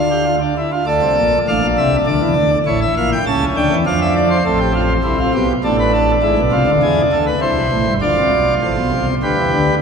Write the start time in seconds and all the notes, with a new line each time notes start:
Already playing: D2 D3 F5
0.11 G4
0.25 F4
0.41 D4
0.58 E4
0.72 F4
0.87 D2 D3 A4 D5
1.02 C2 C3
1.17 A#1 A#2
1.48 A1 A2 D4 F5
1.63 A#1 A#2
1.78 C2 C3 E5
2.07 D2 D3 D5
2.21 E2 E3
2.36 D2 D3
2.66 A1 A2 E4 C#5
2.82 E5
2.97 A#1 A#2 F5
3.12 G5
3.26 C#2 C#3 C#4 A5
3.57 D2 D3 G5
3.71 E2 E3
3.86 F2 F3 D4 F5
4.01 E5
4.16 D5
4.30 C5
4.46 A1 A2 C4 A4
4.60 G4
4.75 F4
5.04 C2 C3 E4
5.19 F4
5.34 B1 B2 G4
5.64 A1 A2 D4 A4
5.79 B4
5.93 A4
6.22 G#1 G#2 E4
6.38 B1 B2
6.52 C2 C3 F4
6.67 D2 D3
6.83 E2 E3 G#4
7.12 D2 D3 A4
7.27 B4
7.41 C2 C3 E4 C5
7.57 B1 B2
7.72 A1 A2
7.87 G1 G2
8.02 D2 D3 F4 D5
8.18 C2 C3
8.33 B1 B2
8.62 A1 A2 C5
8.77 B1 B2
8.91 C2 C3
9.23 D2 D3 G4 B4
9.37 E2 E3
9.53 D2 D3